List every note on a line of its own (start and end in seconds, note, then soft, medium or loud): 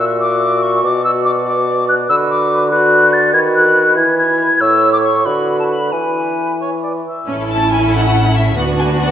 0.00 0.81 A#2 medium
0.00 2.09 F#4 medium
0.00 0.83 E5 soft
0.20 0.64 D6 medium
0.63 0.83 C#6 medium
0.84 2.07 B2 medium
0.84 2.07 D5 soft
0.84 1.04 D6 medium
1.05 1.11 E6 medium
1.25 1.31 D6 medium
1.47 1.87 D6 medium
1.89 1.95 F#6 medium
2.09 3.35 D3 medium
2.09 2.67 F#4 medium
2.09 2.67 B4 medium
2.09 2.15 E6 medium
2.30 2.70 D6 medium
2.71 3.33 F#4 medium
2.71 3.17 B4 medium
2.71 3.15 F#6 medium
3.13 3.33 A6 medium
3.33 3.98 D#3 medium
3.33 3.99 F#4 soft
3.33 3.96 B4 medium
3.33 3.39 G#6 medium
3.55 3.96 F#6 medium
3.97 4.44 E3 soft
3.97 4.60 E4 medium
3.97 4.59 B4 soft
3.97 4.18 G#6 medium
4.18 4.62 G#6 medium
4.61 5.22 A2 medium
4.61 5.27 E4 soft
4.61 5.27 C#5 soft
4.61 4.92 E6 medium
4.93 4.98 D6 medium
5.03 5.27 C#6 medium
5.25 5.91 D3 soft
5.25 5.75 F#4 soft
5.25 5.91 B4 soft
5.25 5.59 B5 soft
5.59 5.64 A5 soft
5.70 5.94 B5 soft
5.92 7.04 E3 soft
5.92 7.03 E4 soft
5.92 6.55 B4 soft
5.92 6.61 G#5 soft
6.61 6.71 C#5 soft
6.83 6.93 D5 soft
7.06 7.28 E5 soft
7.27 8.53 A1 soft
7.27 8.53 C#4 soft
7.27 8.53 E4 soft
7.27 8.54 E4 medium
7.27 8.53 A4 soft
7.51 7.70 A5 medium
7.71 7.93 G#5 medium
7.93 8.35 F#5 medium
8.36 8.57 E5 medium
8.57 9.11 D2 medium
8.57 9.11 B3 soft
8.57 9.11 D4 soft
8.57 9.11 F#4 soft
8.57 9.11 F#4 medium
8.57 9.11 B4 soft
8.57 8.65 F#5 medium
8.79 8.87 G#5 medium
9.01 9.11 F#5 medium